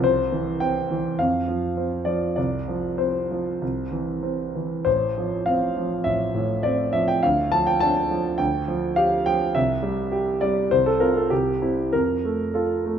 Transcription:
grand piano
Already playing: C2
0.04 C5
0.32 E3
0.60 C4 G5
0.90 E3
1.19 F2 F5
1.48 F3
1.77 C4
2.05 F3 D5
2.36 C2 D5
2.68 F3
2.98 C4 C5
3.31 F3
3.62 C2
3.92 E3
4.23 C4
4.55 E3
4.85 A1 C5
5.18 F3
5.46 C4 F5
5.77 F3
6.04 A1 E5
6.35 A2
6.63 C4 D5
6.93 F3 E5
7.08 G5
7.23 D2 F5
7.52 F3 A5
7.67 G5
7.80 D4 A5
8.11 F3
8.38 D2 G5
8.68 F3
8.96 G4 F5
9.26 F3 G5
9.55 C2 E5
9.83 G3
10.12 G4
10.41 G3 D5
10.71 C2 C5
10.86 A4
11.00 C4 F4 A#4
11.17 A4
11.30 C2 G4
11.62 C4 E4
11.93 F2 A#4
12.25 A3
12.54 F4 A4
12.86 A3

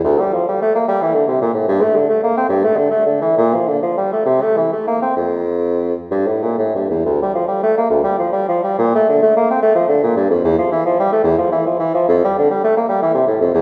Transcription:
bassoon
0.04 D2
0.20 G3
0.33 F3
0.48 G3
0.62 A3
0.75 A#3
0.88 G3
1.02 E3
1.14 D3
1.28 C3
1.41 A#2
1.54 A2
1.68 G2
1.81 A3
1.96 D3
2.09 A3
2.23 A#3
2.37 C4
2.49 G2
2.64 A3
2.77 D3
2.91 A3
3.06 D3
3.21 E3
3.37 A#2
3.54 F3
3.68 D3
3.83 F3
3.97 G3
4.12 A3
4.26 C3
4.41 A3
4.56 E3
4.72 A3
4.87 A#3
5.02 C4
5.16 F2
6.11 G2
6.27 A2
6.43 A#2
6.58 A2
6.75 G2
6.90 E2
7.06 D2
7.22 G3
7.35 F3
7.48 G3
7.63 A3
7.77 A#3
7.90 D2
8.04 G3
8.18 F3
8.32 G3
8.48 F3
8.63 G3
8.78 A#2
8.95 A3
9.09 D3
9.22 A3
9.36 A#3
9.50 C4
9.62 A3
9.75 F3
9.89 D3
10.03 A#2
10.16 G2
10.30 F2
10.44 E2
10.58 F3
10.72 E3
10.85 F3
10.99 G3
11.12 A3
11.24 E2
11.38 F3
11.52 E3
11.66 F3
11.79 E3
11.94 F3
12.08 F2
12.24 G3
12.38 D3
12.50 G3
12.64 A3
12.77 A#3
12.89 G3
13.02 E3
13.14 C3
13.27 A2
13.41 F2
13.54 E2

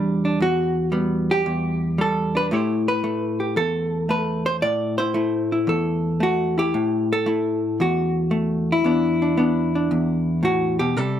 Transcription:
hollow-body jazz guitar
Already playing: E2 G3 D4 G4
0.25 D4
0.40 E2 F#4
0.92 G3 B3
1.31 G4
1.46 E2
1.98 G3 A4
2.35 D4 B4
2.51 A2 A3 E4 G4 C5
2.88 B4
3.04 A3
3.40 G4
3.56 E2 A4
4.09 A3 B4
4.46 C5
4.62 A2 D5
4.98 E4 C5
5.14 A3 E4
5.52 E4
5.67 E2 A4
6.20 A3 F#4
6.58 E4 G4
6.74 A2
7.13 A4
7.26 A3 E4
7.80 E2 F#4
8.31 A3
8.72 E4
8.84 E2 B3 D4
9.22 D4
9.37 B3 D4
9.75 D4
9.91 E2
10.43 A2 F#4
10.79 B2 G4
10.97 C3 G3 A4

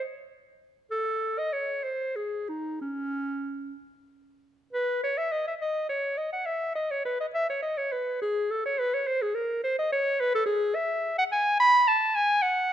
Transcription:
clarinet
0.91 A4
1.38 D#5
1.53 C#5
1.84 C5
2.16 G#4
2.49 D#4
2.82 C#4
4.73 B4
5.04 C#5
5.18 E5
5.32 D#5
5.48 E5
5.61 D#5
5.89 C#5
6.18 D#5
6.33 F#5
6.46 E5
6.75 D#5
6.91 C#5
7.05 B4
7.21 D#5
7.34 E5
7.50 C#5
7.62 D#5
7.78 C#5
7.92 B4
8.22 G#4
8.51 A4
8.66 C#5
8.79 B4
8.94 C#5
9.07 C5
9.22 G#4
9.35 A#4
9.64 C5
9.79 D#5
9.92 C#5
10.21 B4
10.35 A4
10.46 G#4
10.75 E5
11.18 F#5
11.32 G#5
11.60 B5
11.88 A5
12.16 G#5
12.42 F#5

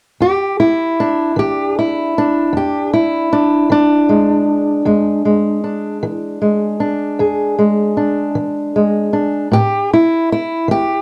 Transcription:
steel-string acoustic guitar
0.20 E2 G4
0.60 E4
1.00 D4
1.36 E3 G4
1.79 E4
2.18 D4
2.53 E2
2.57 G4
2.93 E4
3.33 D4
3.70 E3 D4
4.09 G#3
4.85 E2 G#3
5.25 G#3
5.64 D4
6.03 E3
6.42 G#3
6.80 D4
7.19 E2 G#4
7.59 G#3
7.97 D4
8.35 E3
8.76 G#3
9.13 D4
9.52 A2 G4
9.93 E4
10.32 E4
10.68 E3 G4

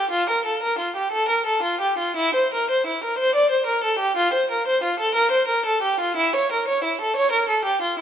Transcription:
violin
Already playing: G4
0.11 F4
0.30 A#4
0.45 A4
0.63 A#4
0.79 F4
0.96 G4
1.12 A4
1.29 A#4
1.46 A4
1.63 F4
1.81 G4
1.98 F4
2.17 E4
2.35 C5
2.54 A#4
2.71 C5
2.87 E4
3.04 A#4
3.18 C5
3.35 D5
3.51 C5
3.66 A#4
3.84 A4
3.99 G4
4.17 F4
4.34 C5
4.51 A#4
4.67 C5
4.83 F4
5.00 A4
5.15 A#4
5.31 C5
5.48 A#4
5.66 A4
5.82 G4
6.00 F4
6.17 E4
6.36 C#5
6.52 A#4
6.68 C#5
6.84 E4
7.01 A4
7.16 C#5
7.32 A#4
7.49 A4
7.65 G4
7.82 F4

